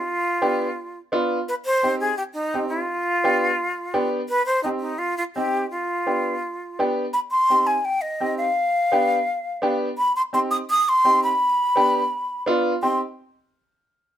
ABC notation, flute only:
X:1
M:4/4
L:1/16
Q:1/4=169
K:Cm
V:1 name="Flute"
F8- F3 z4 z | =B2 c4 A2 G2 E4 F2- | F12- F2 z2 | =B2 c2 E2 E2 F2 F2 G4 |
F12- F2 z2 | =b2 c'4 a2 g2 e4 f2- | f12- f2 z2 | =b2 c'2 c'2 e'2 e'2 c'4 b2- |
=b12 z4 | c'2 z12 z2 |]